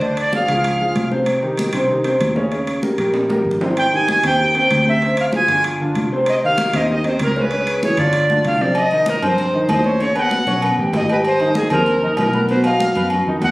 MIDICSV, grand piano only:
0, 0, Header, 1, 2, 480
1, 0, Start_track
1, 0, Tempo, 311850
1, 25, Time_signature, 4, 2, 24, 8
1, 20796, End_track
2, 0, Start_track
2, 0, Title_t, "Grand piano"
2, 0, Program_c, 0, 0
2, 31, Note_on_c, 0, 50, 80
2, 36, Note_on_c, 0, 74, 74
2, 37, Note_on_c, 0, 62, 73
2, 423, Note_off_c, 0, 50, 0
2, 426, Note_off_c, 0, 74, 0
2, 427, Note_off_c, 0, 62, 0
2, 501, Note_on_c, 0, 53, 63
2, 502, Note_on_c, 0, 65, 58
2, 509, Note_on_c, 0, 68, 64
2, 700, Note_off_c, 0, 53, 0
2, 701, Note_off_c, 0, 65, 0
2, 705, Note_off_c, 0, 68, 0
2, 742, Note_on_c, 0, 53, 68
2, 749, Note_on_c, 0, 65, 76
2, 755, Note_on_c, 0, 68, 66
2, 1139, Note_off_c, 0, 53, 0
2, 1143, Note_off_c, 0, 65, 0
2, 1147, Note_off_c, 0, 68, 0
2, 1233, Note_on_c, 0, 53, 71
2, 1241, Note_on_c, 0, 68, 67
2, 1242, Note_on_c, 0, 65, 65
2, 1626, Note_off_c, 0, 53, 0
2, 1631, Note_off_c, 0, 65, 0
2, 1631, Note_off_c, 0, 68, 0
2, 1712, Note_on_c, 0, 48, 79
2, 1713, Note_on_c, 0, 60, 77
2, 1718, Note_on_c, 0, 72, 79
2, 2106, Note_off_c, 0, 48, 0
2, 2107, Note_off_c, 0, 60, 0
2, 2110, Note_off_c, 0, 72, 0
2, 2190, Note_on_c, 0, 51, 69
2, 2196, Note_on_c, 0, 63, 72
2, 2199, Note_on_c, 0, 67, 75
2, 2586, Note_off_c, 0, 51, 0
2, 2589, Note_off_c, 0, 63, 0
2, 2591, Note_off_c, 0, 67, 0
2, 2676, Note_on_c, 0, 48, 81
2, 2684, Note_on_c, 0, 60, 83
2, 2684, Note_on_c, 0, 72, 84
2, 2872, Note_off_c, 0, 48, 0
2, 2877, Note_off_c, 0, 60, 0
2, 2877, Note_off_c, 0, 72, 0
2, 2913, Note_on_c, 0, 51, 60
2, 2915, Note_on_c, 0, 63, 67
2, 2921, Note_on_c, 0, 67, 66
2, 3111, Note_off_c, 0, 51, 0
2, 3112, Note_off_c, 0, 63, 0
2, 3116, Note_off_c, 0, 67, 0
2, 3149, Note_on_c, 0, 48, 79
2, 3153, Note_on_c, 0, 60, 71
2, 3158, Note_on_c, 0, 72, 85
2, 3546, Note_off_c, 0, 48, 0
2, 3548, Note_off_c, 0, 60, 0
2, 3552, Note_off_c, 0, 72, 0
2, 3629, Note_on_c, 0, 49, 88
2, 3635, Note_on_c, 0, 61, 86
2, 3636, Note_on_c, 0, 73, 77
2, 3829, Note_off_c, 0, 49, 0
2, 3833, Note_off_c, 0, 61, 0
2, 3834, Note_off_c, 0, 73, 0
2, 3871, Note_on_c, 0, 49, 70
2, 3874, Note_on_c, 0, 61, 79
2, 3875, Note_on_c, 0, 73, 69
2, 4268, Note_off_c, 0, 49, 0
2, 4270, Note_off_c, 0, 61, 0
2, 4271, Note_off_c, 0, 73, 0
2, 4356, Note_on_c, 0, 55, 68
2, 4363, Note_on_c, 0, 67, 63
2, 4368, Note_on_c, 0, 70, 63
2, 4554, Note_off_c, 0, 55, 0
2, 4559, Note_off_c, 0, 67, 0
2, 4561, Note_off_c, 0, 70, 0
2, 4605, Note_on_c, 0, 55, 73
2, 4614, Note_on_c, 0, 70, 70
2, 4615, Note_on_c, 0, 67, 77
2, 4997, Note_off_c, 0, 55, 0
2, 5002, Note_off_c, 0, 70, 0
2, 5003, Note_off_c, 0, 67, 0
2, 5084, Note_on_c, 0, 55, 65
2, 5087, Note_on_c, 0, 67, 70
2, 5090, Note_on_c, 0, 70, 70
2, 5477, Note_off_c, 0, 55, 0
2, 5479, Note_off_c, 0, 67, 0
2, 5480, Note_off_c, 0, 70, 0
2, 5567, Note_on_c, 0, 48, 84
2, 5572, Note_on_c, 0, 60, 74
2, 5579, Note_on_c, 0, 72, 77
2, 5960, Note_off_c, 0, 48, 0
2, 5962, Note_off_c, 0, 60, 0
2, 5967, Note_off_c, 0, 72, 0
2, 6034, Note_on_c, 0, 51, 66
2, 6042, Note_on_c, 0, 63, 68
2, 6045, Note_on_c, 0, 67, 67
2, 6432, Note_off_c, 0, 51, 0
2, 6436, Note_off_c, 0, 63, 0
2, 6439, Note_off_c, 0, 67, 0
2, 6531, Note_on_c, 0, 60, 83
2, 6533, Note_on_c, 0, 48, 75
2, 6537, Note_on_c, 0, 72, 86
2, 6725, Note_off_c, 0, 60, 0
2, 6726, Note_off_c, 0, 48, 0
2, 6729, Note_off_c, 0, 72, 0
2, 6763, Note_on_c, 0, 51, 65
2, 6764, Note_on_c, 0, 63, 58
2, 6770, Note_on_c, 0, 67, 62
2, 6961, Note_off_c, 0, 51, 0
2, 6961, Note_off_c, 0, 63, 0
2, 6965, Note_off_c, 0, 67, 0
2, 7015, Note_on_c, 0, 48, 86
2, 7019, Note_on_c, 0, 60, 77
2, 7024, Note_on_c, 0, 72, 76
2, 7405, Note_off_c, 0, 48, 0
2, 7407, Note_off_c, 0, 60, 0
2, 7410, Note_off_c, 0, 72, 0
2, 7486, Note_on_c, 0, 48, 86
2, 7490, Note_on_c, 0, 60, 79
2, 7497, Note_on_c, 0, 72, 83
2, 7683, Note_off_c, 0, 48, 0
2, 7685, Note_off_c, 0, 60, 0
2, 7689, Note_off_c, 0, 72, 0
2, 7740, Note_on_c, 0, 48, 70
2, 7745, Note_on_c, 0, 60, 70
2, 7751, Note_on_c, 0, 72, 74
2, 8129, Note_off_c, 0, 48, 0
2, 8131, Note_off_c, 0, 60, 0
2, 8135, Note_off_c, 0, 72, 0
2, 8202, Note_on_c, 0, 53, 67
2, 8211, Note_on_c, 0, 65, 62
2, 8216, Note_on_c, 0, 68, 71
2, 8401, Note_off_c, 0, 53, 0
2, 8406, Note_off_c, 0, 65, 0
2, 8409, Note_off_c, 0, 68, 0
2, 8458, Note_on_c, 0, 50, 72
2, 8465, Note_on_c, 0, 62, 73
2, 8468, Note_on_c, 0, 65, 71
2, 8848, Note_off_c, 0, 50, 0
2, 8851, Note_off_c, 0, 62, 0
2, 8853, Note_off_c, 0, 65, 0
2, 8934, Note_on_c, 0, 50, 69
2, 8938, Note_on_c, 0, 62, 73
2, 8944, Note_on_c, 0, 65, 71
2, 9325, Note_off_c, 0, 50, 0
2, 9327, Note_off_c, 0, 62, 0
2, 9331, Note_off_c, 0, 65, 0
2, 9422, Note_on_c, 0, 48, 85
2, 9428, Note_on_c, 0, 60, 86
2, 9430, Note_on_c, 0, 72, 79
2, 9810, Note_off_c, 0, 48, 0
2, 9813, Note_off_c, 0, 60, 0
2, 9815, Note_off_c, 0, 72, 0
2, 9905, Note_on_c, 0, 51, 73
2, 9910, Note_on_c, 0, 63, 76
2, 9913, Note_on_c, 0, 67, 69
2, 10292, Note_off_c, 0, 51, 0
2, 10295, Note_off_c, 0, 63, 0
2, 10296, Note_off_c, 0, 67, 0
2, 10381, Note_on_c, 0, 48, 75
2, 10384, Note_on_c, 0, 60, 86
2, 10390, Note_on_c, 0, 72, 77
2, 10573, Note_off_c, 0, 48, 0
2, 10574, Note_off_c, 0, 60, 0
2, 10578, Note_off_c, 0, 72, 0
2, 10610, Note_on_c, 0, 51, 65
2, 10615, Note_on_c, 0, 63, 72
2, 10618, Note_on_c, 0, 67, 66
2, 10806, Note_off_c, 0, 51, 0
2, 10809, Note_off_c, 0, 63, 0
2, 10811, Note_off_c, 0, 67, 0
2, 10856, Note_on_c, 0, 48, 81
2, 10858, Note_on_c, 0, 60, 83
2, 10865, Note_on_c, 0, 72, 78
2, 11246, Note_off_c, 0, 48, 0
2, 11247, Note_off_c, 0, 60, 0
2, 11251, Note_off_c, 0, 72, 0
2, 11333, Note_on_c, 0, 49, 82
2, 11334, Note_on_c, 0, 61, 81
2, 11344, Note_on_c, 0, 73, 81
2, 11528, Note_off_c, 0, 49, 0
2, 11528, Note_off_c, 0, 61, 0
2, 11534, Note_off_c, 0, 73, 0
2, 11577, Note_on_c, 0, 49, 75
2, 11583, Note_on_c, 0, 61, 80
2, 11590, Note_on_c, 0, 73, 73
2, 11966, Note_off_c, 0, 49, 0
2, 11970, Note_off_c, 0, 61, 0
2, 11974, Note_off_c, 0, 73, 0
2, 12052, Note_on_c, 0, 64, 66
2, 12057, Note_on_c, 0, 52, 68
2, 12063, Note_on_c, 0, 68, 63
2, 12247, Note_off_c, 0, 64, 0
2, 12250, Note_off_c, 0, 52, 0
2, 12253, Note_off_c, 0, 68, 0
2, 12300, Note_on_c, 0, 50, 71
2, 12300, Note_on_c, 0, 62, 73
2, 12305, Note_on_c, 0, 65, 81
2, 12688, Note_off_c, 0, 50, 0
2, 12688, Note_off_c, 0, 62, 0
2, 12691, Note_off_c, 0, 65, 0
2, 12783, Note_on_c, 0, 50, 73
2, 12785, Note_on_c, 0, 62, 70
2, 12794, Note_on_c, 0, 65, 66
2, 13170, Note_off_c, 0, 50, 0
2, 13171, Note_off_c, 0, 62, 0
2, 13176, Note_off_c, 0, 65, 0
2, 13241, Note_on_c, 0, 48, 83
2, 13249, Note_on_c, 0, 60, 84
2, 13250, Note_on_c, 0, 72, 84
2, 13440, Note_off_c, 0, 48, 0
2, 13444, Note_off_c, 0, 60, 0
2, 13445, Note_off_c, 0, 72, 0
2, 13729, Note_on_c, 0, 51, 74
2, 13735, Note_on_c, 0, 63, 79
2, 13738, Note_on_c, 0, 75, 80
2, 14120, Note_off_c, 0, 51, 0
2, 14124, Note_off_c, 0, 63, 0
2, 14126, Note_off_c, 0, 75, 0
2, 14207, Note_on_c, 0, 48, 89
2, 14207, Note_on_c, 0, 60, 89
2, 14208, Note_on_c, 0, 72, 89
2, 14598, Note_off_c, 0, 60, 0
2, 14599, Note_off_c, 0, 48, 0
2, 14599, Note_off_c, 0, 72, 0
2, 14680, Note_on_c, 0, 51, 73
2, 14683, Note_on_c, 0, 75, 71
2, 14687, Note_on_c, 0, 63, 73
2, 15074, Note_off_c, 0, 51, 0
2, 15076, Note_off_c, 0, 75, 0
2, 15078, Note_off_c, 0, 63, 0
2, 15163, Note_on_c, 0, 61, 80
2, 15172, Note_on_c, 0, 73, 82
2, 15175, Note_on_c, 0, 85, 76
2, 15359, Note_off_c, 0, 61, 0
2, 15364, Note_off_c, 0, 73, 0
2, 15366, Note_off_c, 0, 85, 0
2, 15393, Note_on_c, 0, 61, 77
2, 15398, Note_on_c, 0, 49, 76
2, 15400, Note_on_c, 0, 73, 86
2, 15593, Note_off_c, 0, 61, 0
2, 15595, Note_off_c, 0, 49, 0
2, 15597, Note_off_c, 0, 73, 0
2, 15630, Note_on_c, 0, 59, 75
2, 15638, Note_on_c, 0, 71, 78
2, 15641, Note_on_c, 0, 83, 72
2, 16027, Note_off_c, 0, 59, 0
2, 16031, Note_off_c, 0, 71, 0
2, 16033, Note_off_c, 0, 83, 0
2, 16121, Note_on_c, 0, 61, 79
2, 16123, Note_on_c, 0, 73, 76
2, 16127, Note_on_c, 0, 85, 77
2, 16317, Note_off_c, 0, 61, 0
2, 16318, Note_off_c, 0, 73, 0
2, 16320, Note_off_c, 0, 85, 0
2, 16366, Note_on_c, 0, 59, 74
2, 16366, Note_on_c, 0, 71, 73
2, 16374, Note_on_c, 0, 83, 67
2, 16559, Note_off_c, 0, 59, 0
2, 16559, Note_off_c, 0, 71, 0
2, 16564, Note_off_c, 0, 83, 0
2, 16608, Note_on_c, 0, 55, 77
2, 16612, Note_on_c, 0, 67, 80
2, 16622, Note_on_c, 0, 79, 78
2, 16996, Note_off_c, 0, 55, 0
2, 16999, Note_off_c, 0, 67, 0
2, 17005, Note_off_c, 0, 79, 0
2, 17071, Note_on_c, 0, 55, 80
2, 17078, Note_on_c, 0, 67, 75
2, 17081, Note_on_c, 0, 79, 82
2, 17466, Note_off_c, 0, 55, 0
2, 17469, Note_off_c, 0, 67, 0
2, 17471, Note_off_c, 0, 79, 0
2, 17550, Note_on_c, 0, 51, 78
2, 17557, Note_on_c, 0, 63, 74
2, 17558, Note_on_c, 0, 75, 76
2, 17944, Note_off_c, 0, 51, 0
2, 17948, Note_off_c, 0, 63, 0
2, 17949, Note_off_c, 0, 75, 0
2, 18034, Note_on_c, 0, 48, 92
2, 18036, Note_on_c, 0, 60, 86
2, 18037, Note_on_c, 0, 72, 83
2, 18426, Note_off_c, 0, 48, 0
2, 18427, Note_off_c, 0, 60, 0
2, 18427, Note_off_c, 0, 72, 0
2, 18509, Note_on_c, 0, 51, 68
2, 18514, Note_on_c, 0, 63, 73
2, 18521, Note_on_c, 0, 75, 76
2, 18902, Note_off_c, 0, 51, 0
2, 18905, Note_off_c, 0, 63, 0
2, 18909, Note_off_c, 0, 75, 0
2, 18993, Note_on_c, 0, 59, 76
2, 18997, Note_on_c, 0, 71, 77
2, 19001, Note_on_c, 0, 83, 79
2, 19188, Note_off_c, 0, 59, 0
2, 19190, Note_off_c, 0, 71, 0
2, 19192, Note_off_c, 0, 83, 0
2, 19242, Note_on_c, 0, 47, 79
2, 19249, Note_on_c, 0, 59, 81
2, 19254, Note_on_c, 0, 71, 83
2, 19432, Note_off_c, 0, 47, 0
2, 19437, Note_off_c, 0, 59, 0
2, 19439, Note_off_c, 0, 71, 0
2, 19472, Note_on_c, 0, 54, 79
2, 19483, Note_on_c, 0, 66, 71
2, 19488, Note_on_c, 0, 75, 77
2, 19862, Note_off_c, 0, 54, 0
2, 19868, Note_off_c, 0, 66, 0
2, 19872, Note_off_c, 0, 75, 0
2, 19951, Note_on_c, 0, 59, 73
2, 19952, Note_on_c, 0, 71, 77
2, 19959, Note_on_c, 0, 83, 79
2, 20144, Note_off_c, 0, 59, 0
2, 20145, Note_off_c, 0, 71, 0
2, 20150, Note_off_c, 0, 83, 0
2, 20194, Note_on_c, 0, 54, 65
2, 20200, Note_on_c, 0, 66, 66
2, 20202, Note_on_c, 0, 78, 72
2, 20386, Note_off_c, 0, 54, 0
2, 20390, Note_off_c, 0, 66, 0
2, 20391, Note_off_c, 0, 78, 0
2, 20434, Note_on_c, 0, 51, 76
2, 20435, Note_on_c, 0, 63, 77
2, 20440, Note_on_c, 0, 75, 72
2, 20796, Note_off_c, 0, 51, 0
2, 20796, Note_off_c, 0, 63, 0
2, 20796, Note_off_c, 0, 75, 0
2, 20796, End_track
0, 0, End_of_file